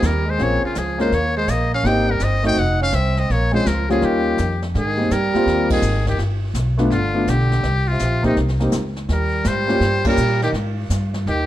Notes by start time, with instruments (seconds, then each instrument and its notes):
0.02 upright bass D#2, tenor saxophone G3, snare, hi-hat pedal
0.06 muted trumpet A#4
0.26 tenor saxophone G#3, muted trumpet C5
0.38 upright bass A#1, tenor saxophone A#3, grand piano C4 C#4 F4 G#4, brush sweep, snare
0.43 muted trumpet C#5
0.63 tenor saxophone C#3, muted trumpet F4, muted upright bass stroke
0.75 upright bass C#2, tenor saxophone F3, muted trumpet G#4, snare, hi-hat pedal
0.98 tenor saxophone G#3, grand piano A#3 C#4 F4 A#4, muted trumpet C5, snare
1.12 upright bass D#2, tenor saxophone A#3, muted trumpet C#5, brush sweep, snare
1.37 tenor saxophone G#3, muted trumpet C5
1.47 upright bass A#1, tenor saxophone A#3, muted trumpet D#5, snare, hi-hat pedal
1.74 tenor saxophone C#4, muted trumpet F5
1.83 upright bass G#1, grand piano A#3 C4 D#4 G4, tenor saxophone D#4, muted trumpet G5, brush sweep, snare
2.08 tenor saxophone G3, muted trumpet A#4
2.20 upright bass G1, tenor saxophone C4, snare, hi-hat pedal
2.24 muted trumpet D#5
2.43 grand piano A3 C4 D#4 F#4, tenor saxophone D#4, snare
2.47 muted trumpet G5
2.56 upright bass F1, tenor saxophone D#4, muted trumpet F#5, brush sweep, snare
2.81 tenor saxophone C#4, muted trumpet F5
2.92 upright bass C2, tenor saxophone C4, muted trumpet E5, snare, hi-hat pedal
3.17 tenor saxophone C4, muted trumpet D#5, snare
3.29 upright bass A#1, tenor saxophone A#3, muted trumpet C#5, brush sweep, snare
3.51 grand piano G#3 C4 C#4 F4, tenor saxophone G#3, muted trumpet C5
3.65 upright bass C#2, tenor saxophone F3, muted trumpet A#4, snare, hi-hat pedal
3.89 tenor saxophone F3, grand piano G3 A#3 C#4 F4, muted trumpet G#4, snare
4.02 upright bass D#2, tenor saxophone D#3, muted trumpet G4, brush sweep, snare
4.38 upright bass F2, snare, hi-hat pedal
4.62 snare
4.75 upright bass G#2, tenor saxophone D#3, muted trumpet G#4, brush sweep, snare
4.97 grand piano G3 A#3 C4 D#4
5.11 upright bass G2, tenor saxophone G3, muted trumpet A#4, snare, hi-hat pedal
5.34 grand piano G3 A#3 C4 F4, muted upright bass stroke, snare
5.46 upright bass D#2, brush sweep, snare
5.70 tenor saxophone D#3, muted trumpet G#4, kick, ride
5.82 upright bass G#1, hi-hat pedal
6.06 tenor saxophone D#3, muted trumpet G4, kick, snare
6.18 upright bass G1, brush sweep, snare
6.54 upright bass B1, snare, hi-hat pedal
6.78 grand piano A3 B3 D4 F4, snare
6.90 upright bass G1, tenor saxophone D3, muted trumpet F4, brush sweep, snare
7.14 grand piano A3 B3 D4 F4
7.26 upright bass B1, tenor saxophone D3, muted trumpet G4, snare, hi-hat pedal
7.52 snare
7.63 upright bass C2, brush sweep, snare
7.88 tenor saxophone C3, muted trumpet F4
7.99 upright bass A#1, snare, hi-hat pedal
8.23 tenor saxophone C3, grand piano A#3 C4 D#4 G4, muted trumpet D#4, kick, snare
8.36 upright bass C2, brush sweep, snare
8.48 snare
8.60 grand piano A#3 C4 D#4 G4, snare
8.72 upright bass C#2, snare, hi-hat pedal
8.96 snare
9.09 upright bass D#2, tenor saxophone G3, muted trumpet A#4, brush sweep, snare
9.44 upright bass G#2, tenor saxophone G3, muted trumpet C5, snare, hi-hat pedal
9.67 grand piano A#3 C#4 F4 G4, snare
9.80 upright bass G2, brush sweep, snare
10.04 tenor saxophone G3, grand piano A#3 C#4 F4 A#4, muted trumpet A#4, kick, ride
10.17 upright bass A#2, hi-hat pedal
10.42 tenor saxophone D#3, muted trumpet G4, snare
10.53 upright bass G#2, brush sweep, snare
10.90 upright bass G2, snare, hi-hat pedal
11.14 snare
11.26 upright bass D#2, tenor saxophone D#3, muted trumpet G4, brush sweep, snare